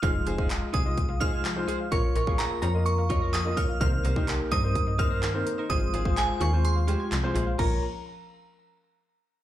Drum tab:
CC |----------------|----------------|----------------|----------------|
HH |x-x-x-x-x-x-x-x-|x-x-x-x-x-x-x-x-|x-x-x-x-x-x-x-x-|x-x-x-x-x-x-x-x-|
CP |----x-------x---|----x-------x---|----x-------x---|----x-------x---|
BD |o--o--o-o-o-----|o--o------o---o-|o--o--o-o-o-----|o--o------------|

CC |x---------------|
HH |----------------|
CP |----------------|
BD |o---------------|